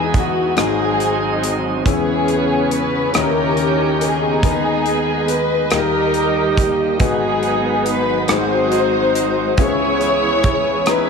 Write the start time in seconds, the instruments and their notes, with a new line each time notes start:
Already playing: grand piano E2 E3 B3 D#4 G#4, string section E3 G#3 B3 D#4 G#4, tonewheel organ E3 B3 D#4 G#4
0.14 kick, closed hi-hat
0.18 string section F#4
0.56 grand piano G#1 G#2 C4 D#4 F#4 G#4, string section F#3 G#3 C4, tonewheel organ F#3 C4, cross-stick, closed hi-hat
0.60 string section C4 D#4 G#4
1.00 closed hi-hat
1.44 closed hi-hat
1.84 grand piano E2 E3 B3 C#4 E4 G#4, string section C#3 B3 C#4, tonewheel organ C#3 B3 C#4, kick, closed hi-hat
1.89 string section B3 C#4 G#4
2.28 closed hi-hat
2.71 string section B4, closed hi-hat
3.14 grand piano D#2 D#3 C#4 D#4 E4 G4, tonewheel organ D#3 G5, string section D#3 C#4 G4 A#4 D#5, cross-stick, closed hi-hat
3.57 closed hi-hat
4.01 string section B3 D#4 G#4, closed hi-hat
4.42 grand piano D#2 D#3 B3 D#4 G#4 A#4, tonewheel organ D#3 G#3 B3 G#4, string section D#3 G#3 B3, kick, closed hi-hat
4.51 grand piano B4
4.86 closed hi-hat
5.28 string section B4, closed hi-hat
5.70 grand piano D#2 D#3 A#3 D#4 G4 G#4, tonewheel organ G3 A#3 G4, string section G3 A#3 D#4, cross-stick, closed hi-hat
5.75 string section G4 A#4
5.79 grand piano A#4
6.14 closed hi-hat
6.57 kick, closed hi-hat
6.99 grand piano G#1 G#2 B3 D#4 F#4 G#4, string section F#3 G#3 B3, tonewheel organ G#3 B3 F#4, kick, closed hi-hat
7.03 string section D#4 G#4
7.43 closed hi-hat
7.86 string section B4, closed hi-hat
8.28 grand piano G#1 G#2 C4 D#4 F#4 G#4, tonewheel organ D#3 C4, string section C4 D#4, cross-stick, closed hi-hat
8.33 string section D#4 F#4 C5
8.72 closed hi-hat
9.15 closed hi-hat
9.57 grand piano C#2 C#3 B3 C#4 E4 G#4, tonewheel organ E3 B3 C#4 G#4, string section E3 B3 C#4, kick, closed hi-hat
9.61 string section E4 G#4 C#5
10.01 closed hi-hat
10.44 kick, closed hi-hat
10.86 grand piano B3 C#4 D#4 A#5, string section G#4 B4, cross-stick, closed hi-hat
10.90 string section E4, grand piano E4